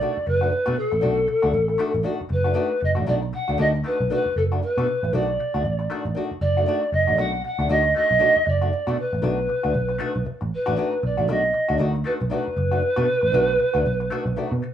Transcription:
Already playing: D5
0.01 D#3 A3 D4 F#4
0.17 muted picked electric bass stroke
0.26 F#1 B4, muted hollow-body jazz guitar stroke
0.41 D#3 A3 D4 F#4
0.51 muted hollow-body jazz guitar stroke
0.66 B2 D#3 A3 D4 F#4
0.76 A4, muted hollow-body jazz guitar stroke
0.92 A1, muted hollow-body jazz guitar stroke
1.01 B1 D#3 A3 D4 F#4
1.27 muted hollow-body jazz guitar stroke
1.42 D2 D#3 A3 D4 F#4
1.53 A1, muted hollow-body jazz guitar stroke
1.68 muted hollow-body jazz guitar stroke
1.78 D#3 A3 D4 F#4
1.94 A1, muted hollow-body jazz guitar stroke
2.03 D#3 A3 D4 F#4
2.21 muted picked electric bass stroke
2.29 F#1 B4, muted hollow-body jazz guitar stroke
2.44 D#3 A3 D4 F#4
2.54 D#3 A3 D4 F#4
2.80 F#1, muted hollow-body jazz guitar stroke
2.84 D#5
2.95 A1 D#3 A3 D4 F#4
3.06 B1 D#3 A3 D4 F#4 D5
3.22 muted hollow-body jazz guitar stroke
3.33 F#5, muted hollow-body jazz guitar stroke
3.48 D2 D#3 A3 D4 F#4
3.58 D2 D#3 A3 D4 F#4 D#5
3.75 muted hollow-body jazz guitar stroke
3.84 D#3 A3 D4 F#4 B4
4.00 B1, muted hollow-body jazz guitar stroke
4.10 D#3 A3 D4 F#4 B4
4.26 muted picked electric bass stroke
4.36 F#1 A4, muted hollow-body jazz guitar stroke
4.52 D#3 A3 D4 F#4
4.62 B4, muted hollow-body jazz guitar stroke
4.77 B2 D#3 A3 D4 F#4
4.87 muted hollow-body jazz guitar stroke
5.03 A1, muted hollow-body jazz guitar stroke
5.13 B1 D#3 A3 D4 F#4 D5
5.39 muted hollow-body jazz guitar stroke
5.54 D2 D#3 A3 D4 F#4
5.64 A1, muted hollow-body jazz guitar stroke
5.79 muted hollow-body jazz guitar stroke
5.90 D#3 A3 D4 F#4
6.05 A1, muted hollow-body jazz guitar stroke
6.15 D#3 A3 D4 F#4
6.31 muted picked electric bass stroke
6.41 F#1 D5, muted hollow-body jazz guitar stroke
6.57 D#3 A3 D4 F#4
6.66 D#3 A3 D4 F#4
6.92 F#1 D#5, muted hollow-body jazz guitar stroke
7.07 A1 D#3 A3 D4 F#4
7.17 B1 D#3 A3 D4 F#4 F#5
7.33 muted hollow-body jazz guitar stroke
7.44 F#5, muted hollow-body jazz guitar stroke
7.59 D2 D#3 A3 D4 F#4
7.69 D2 D#3 A3 D4 F#4 D#5
7.85 muted hollow-body jazz guitar stroke
7.94 D#3 A3 D4 F#4 D#5
8.11 B1, muted hollow-body jazz guitar stroke
8.19 D#3 A3 D4 F#4
8.36 muted picked electric bass stroke
8.45 F#1 D5, muted hollow-body jazz guitar stroke
8.61 D#3 A3 D4 F#4
8.72 muted hollow-body jazz guitar stroke
8.87 B2 D#3 A3 D4 F#4
8.98 B4, muted hollow-body jazz guitar stroke
9.13 A1, muted hollow-body jazz guitar stroke
9.22 B1 D#3 A3 D4 F#4
9.48 muted hollow-body jazz guitar stroke
9.63 D2 D#3 A3 D4 F#4
9.74 B1, muted hollow-body jazz guitar stroke
9.89 muted hollow-body jazz guitar stroke
9.98 D#3 A3 D4 F#4
10.15 B1, muted hollow-body jazz guitar stroke
10.25 muted hollow-body jazz guitar stroke, muted picked electric bass stroke
10.41 A1, muted hollow-body jazz guitar stroke
10.54 B4
10.66 A1 D#3 A3 D4 F#4
10.76 D#3 A3 D4 F#4
11.02 B1 D5, muted hollow-body jazz guitar stroke
11.17 A1 D#3 A3 D4 F#4
11.28 B1 D#3 A3 D4 F#4 D#5
11.43 muted hollow-body jazz guitar stroke
11.53 muted hollow-body jazz guitar stroke
11.69 D2 D#3 A3 D4 F#4
11.78 D2 D#3 A3 D4 F#4
11.95 muted hollow-body jazz guitar stroke
12.04 D#3 A3 D4 F#4 B4
12.20 B1, muted hollow-body jazz guitar stroke
12.30 D#3 A3 D4 F#4 B4
12.48 muted picked electric bass stroke
12.56 F#1, muted hollow-body jazz guitar stroke
12.71 D#3 A3 D4 F#4
12.82 muted hollow-body jazz guitar stroke
12.96 B2 D#3 A3 D4 F#4
13.06 muted hollow-body jazz guitar stroke
13.21 A1, muted hollow-body jazz guitar stroke
13.32 B1 D#3 A3 D4 F#4
13.58 muted hollow-body jazz guitar stroke
13.74 D2 D#3 A3 D4 F#4
13.85 B1, muted hollow-body jazz guitar stroke
14.00 muted hollow-body jazz guitar stroke
14.10 D#3 A3 D4 F#4
14.26 B1, muted hollow-body jazz guitar stroke
14.36 D#3 A3 D4 F#4
14.52 B2
14.62 muted hollow-body jazz guitar stroke

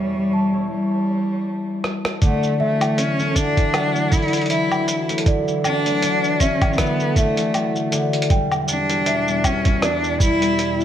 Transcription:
Already playing: E2 B2 E3 G3 B3 E4 C#5 E5 C#6
0.16 G3
0.33 A5
0.53 E4
0.71 G3
1.84 cross-stick
2.05 cross-stick
2.22 D3 E3 F#3 A3, kick, closed hi-hat, shaker
2.43 shaker
2.60 E3 A3 E5
2.81 E3, closed hi-hat, low woodblock, shaker
2.98 C#4, closed hi-hat, shaker
3.19 A3, shaker
3.35 D3 D4, kick, closed hi-hat, shaker
3.57 E3, kick, closed hi-hat, shaker
3.73 F#3 F#5, cross-stick, closed hi-hat, low woodblock, shaker
3.95 A3, shaker
4.12 D3 E4, kick, closed hi-hat, shaker
4.18 closed hi-hat
4.22 closed hi-hat
4.28 closed hi-hat
4.33 closed hi-hat, shaker
4.37 closed hi-hat
4.41 closed hi-hat
4.46 closed hi-hat
4.50 E3 E4 E5, closed hi-hat, shaker
4.72 E3, low woodblock, shaker
4.88 closed hi-hat, shaker
5.09 A3, closed hi-hat, shaker
5.18 closed hi-hat
5.26 D3 D5, kick, closed hi-hat, shaker
5.47 E3, shaker
5.64 F#3 D4, low woodblock, shaker
5.86 A3, closed hi-hat, shaker
6.02 D3, closed hi-hat, shaker
6.24 shaker
6.40 E3 C#4 E5, kick, closed hi-hat, shaker
6.62 E3, kick, closed hi-hat, low woodblock, shaker
6.73 shaker
6.78 B3, kick, cross-stick, closed hi-hat, shaker
6.86 shaker
7.00 A3, shaker
7.16 D3 A3 E5, kick, closed hi-hat, shaker
7.37 E3, closed hi-hat, shaker
7.54 F#3, closed hi-hat, low woodblock, shaker
7.76 A3, shaker
7.92 D3, closed hi-hat, shaker
8.13 closed hi-hat, shaker
8.22 closed hi-hat
8.30 E2 B2 G3 G5, kick, closed hi-hat, shaker
8.52 G3, low woodblock, shaker
8.68 D4, shaker
8.90 E4, closed hi-hat, shaker
9.06 E3 E5, closed hi-hat, shaker
9.27 G3, shaker
9.44 B3 C#4, kick, closed hi-hat, low woodblock, shaker
9.65 E4, kick, closed hi-hat, shaker
9.82 E3 D4 D5, cross-stick, closed hi-hat, shaker
10.04 shaker
10.20 G3 E4, kick, closed hi-hat, shaker
10.41 G3, closed hi-hat, shaker
10.59 closed hi-hat, shaker
10.79 E4, shaker

